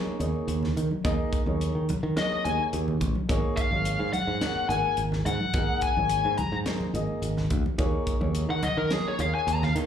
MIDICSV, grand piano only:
0, 0, Header, 1, 2, 480
1, 0, Start_track
1, 0, Key_signature, -6, "minor"
1, 0, Tempo, 562324
1, 889, Time_signature, 4, 2, 24, 8
1, 8418, End_track
2, 0, Start_track
2, 0, Title_t, "Grand piano"
2, 0, Program_c, 0, 0
2, 0, Note_on_c, 0, 58, 77
2, 0, Note_on_c, 0, 63, 76
2, 0, Note_on_c, 0, 68, 72
2, 0, Note_on_c, 0, 73, 83
2, 123, Note_off_c, 0, 58, 0
2, 124, Note_off_c, 0, 68, 0
2, 125, Note_off_c, 0, 63, 0
2, 128, Note_off_c, 0, 73, 0
2, 166, Note_on_c, 0, 58, 77
2, 168, Note_on_c, 0, 63, 72
2, 172, Note_on_c, 0, 68, 69
2, 174, Note_on_c, 0, 73, 83
2, 560, Note_off_c, 0, 58, 0
2, 561, Note_off_c, 0, 63, 0
2, 563, Note_off_c, 0, 68, 0
2, 564, Note_off_c, 0, 73, 0
2, 654, Note_on_c, 0, 68, 17
2, 662, Note_on_c, 0, 73, 19
2, 712, Note_off_c, 0, 68, 0
2, 715, Note_off_c, 0, 73, 0
2, 889, Note_on_c, 0, 58, 101
2, 890, Note_on_c, 0, 63, 99
2, 894, Note_on_c, 0, 68, 91
2, 895, Note_on_c, 0, 75, 121
2, 1183, Note_off_c, 0, 58, 0
2, 1184, Note_off_c, 0, 63, 0
2, 1185, Note_off_c, 0, 68, 0
2, 1186, Note_off_c, 0, 75, 0
2, 1252, Note_on_c, 0, 58, 75
2, 1254, Note_on_c, 0, 63, 71
2, 1256, Note_on_c, 0, 68, 67
2, 1261, Note_on_c, 0, 73, 87
2, 1543, Note_off_c, 0, 58, 0
2, 1544, Note_off_c, 0, 63, 0
2, 1545, Note_off_c, 0, 68, 0
2, 1548, Note_off_c, 0, 73, 0
2, 1608, Note_on_c, 0, 68, 18
2, 1617, Note_on_c, 0, 73, 22
2, 1669, Note_off_c, 0, 68, 0
2, 1673, Note_off_c, 0, 73, 0
2, 1853, Note_on_c, 0, 58, 67
2, 1856, Note_on_c, 0, 63, 62
2, 1861, Note_on_c, 0, 68, 60
2, 1862, Note_on_c, 0, 73, 75
2, 2048, Note_off_c, 0, 58, 0
2, 2049, Note_off_c, 0, 63, 0
2, 2052, Note_off_c, 0, 68, 0
2, 2053, Note_off_c, 0, 73, 0
2, 2095, Note_on_c, 0, 58, 67
2, 2097, Note_on_c, 0, 63, 64
2, 2100, Note_on_c, 0, 73, 69
2, 2101, Note_on_c, 0, 68, 56
2, 2485, Note_off_c, 0, 58, 0
2, 2486, Note_off_c, 0, 63, 0
2, 2488, Note_off_c, 0, 68, 0
2, 2488, Note_off_c, 0, 73, 0
2, 2569, Note_on_c, 0, 68, 18
2, 2574, Note_on_c, 0, 75, 21
2, 2629, Note_off_c, 0, 68, 0
2, 2632, Note_off_c, 0, 75, 0
2, 2805, Note_on_c, 0, 58, 107
2, 2807, Note_on_c, 0, 63, 93
2, 2810, Note_on_c, 0, 68, 102
2, 2813, Note_on_c, 0, 73, 117
2, 3101, Note_off_c, 0, 58, 0
2, 3103, Note_off_c, 0, 63, 0
2, 3104, Note_off_c, 0, 68, 0
2, 3106, Note_off_c, 0, 73, 0
2, 3173, Note_on_c, 0, 58, 63
2, 3176, Note_on_c, 0, 63, 58
2, 3178, Note_on_c, 0, 68, 58
2, 3181, Note_on_c, 0, 73, 71
2, 3464, Note_off_c, 0, 58, 0
2, 3465, Note_off_c, 0, 63, 0
2, 3466, Note_off_c, 0, 68, 0
2, 3468, Note_off_c, 0, 73, 0
2, 3533, Note_on_c, 0, 68, 15
2, 3537, Note_on_c, 0, 73, 17
2, 3592, Note_off_c, 0, 68, 0
2, 3594, Note_off_c, 0, 73, 0
2, 3762, Note_on_c, 0, 58, 69
2, 3766, Note_on_c, 0, 63, 60
2, 3767, Note_on_c, 0, 68, 64
2, 3772, Note_on_c, 0, 73, 72
2, 3963, Note_off_c, 0, 58, 0
2, 3964, Note_off_c, 0, 63, 0
2, 3965, Note_off_c, 0, 68, 0
2, 3968, Note_off_c, 0, 73, 0
2, 3998, Note_on_c, 0, 58, 63
2, 4004, Note_on_c, 0, 63, 61
2, 4008, Note_on_c, 0, 68, 61
2, 4009, Note_on_c, 0, 70, 71
2, 4397, Note_off_c, 0, 58, 0
2, 4400, Note_off_c, 0, 63, 0
2, 4402, Note_off_c, 0, 68, 0
2, 4402, Note_off_c, 0, 70, 0
2, 4727, Note_on_c, 0, 58, 88
2, 4729, Note_on_c, 0, 63, 80
2, 4733, Note_on_c, 0, 68, 77
2, 4735, Note_on_c, 0, 70, 92
2, 5022, Note_off_c, 0, 58, 0
2, 5024, Note_off_c, 0, 63, 0
2, 5026, Note_off_c, 0, 68, 0
2, 5026, Note_off_c, 0, 70, 0
2, 5093, Note_on_c, 0, 58, 61
2, 5094, Note_on_c, 0, 63, 56
2, 5097, Note_on_c, 0, 68, 54
2, 5102, Note_on_c, 0, 73, 65
2, 5384, Note_off_c, 0, 58, 0
2, 5384, Note_off_c, 0, 63, 0
2, 5386, Note_off_c, 0, 68, 0
2, 5388, Note_off_c, 0, 73, 0
2, 5450, Note_on_c, 0, 68, 16
2, 5456, Note_on_c, 0, 73, 17
2, 5510, Note_off_c, 0, 68, 0
2, 5513, Note_off_c, 0, 73, 0
2, 5689, Note_on_c, 0, 58, 60
2, 5690, Note_on_c, 0, 63, 61
2, 5693, Note_on_c, 0, 68, 60
2, 5698, Note_on_c, 0, 72, 74
2, 5886, Note_off_c, 0, 58, 0
2, 5886, Note_off_c, 0, 63, 0
2, 5888, Note_off_c, 0, 68, 0
2, 5891, Note_off_c, 0, 72, 0
2, 5923, Note_on_c, 0, 58, 76
2, 5924, Note_on_c, 0, 63, 69
2, 5931, Note_on_c, 0, 68, 73
2, 5933, Note_on_c, 0, 75, 88
2, 6319, Note_off_c, 0, 58, 0
2, 6319, Note_off_c, 0, 63, 0
2, 6323, Note_off_c, 0, 68, 0
2, 6324, Note_off_c, 0, 75, 0
2, 6409, Note_on_c, 0, 68, 19
2, 6418, Note_on_c, 0, 73, 19
2, 6469, Note_off_c, 0, 68, 0
2, 6474, Note_off_c, 0, 73, 0
2, 6644, Note_on_c, 0, 58, 108
2, 6645, Note_on_c, 0, 63, 95
2, 6649, Note_on_c, 0, 68, 95
2, 6649, Note_on_c, 0, 73, 116
2, 6941, Note_off_c, 0, 58, 0
2, 6941, Note_off_c, 0, 63, 0
2, 6943, Note_off_c, 0, 68, 0
2, 6943, Note_off_c, 0, 73, 0
2, 7010, Note_on_c, 0, 58, 75
2, 7011, Note_on_c, 0, 63, 65
2, 7016, Note_on_c, 0, 68, 65
2, 7018, Note_on_c, 0, 73, 84
2, 7302, Note_off_c, 0, 58, 0
2, 7303, Note_off_c, 0, 63, 0
2, 7305, Note_off_c, 0, 68, 0
2, 7306, Note_off_c, 0, 73, 0
2, 7373, Note_on_c, 0, 68, 16
2, 7380, Note_on_c, 0, 75, 17
2, 7431, Note_off_c, 0, 68, 0
2, 7435, Note_off_c, 0, 75, 0
2, 7611, Note_on_c, 0, 58, 68
2, 7612, Note_on_c, 0, 63, 63
2, 7614, Note_on_c, 0, 68, 61
2, 7621, Note_on_c, 0, 73, 73
2, 7807, Note_off_c, 0, 58, 0
2, 7807, Note_off_c, 0, 63, 0
2, 7808, Note_off_c, 0, 68, 0
2, 7812, Note_off_c, 0, 73, 0
2, 7843, Note_on_c, 0, 58, 68
2, 7846, Note_on_c, 0, 63, 56
2, 7849, Note_on_c, 0, 68, 60
2, 7855, Note_on_c, 0, 73, 76
2, 8239, Note_off_c, 0, 58, 0
2, 8241, Note_off_c, 0, 63, 0
2, 8242, Note_off_c, 0, 68, 0
2, 8245, Note_off_c, 0, 73, 0
2, 8328, Note_on_c, 0, 68, 16
2, 8336, Note_on_c, 0, 73, 17
2, 8389, Note_off_c, 0, 68, 0
2, 8393, Note_off_c, 0, 73, 0
2, 8418, End_track
0, 0, End_of_file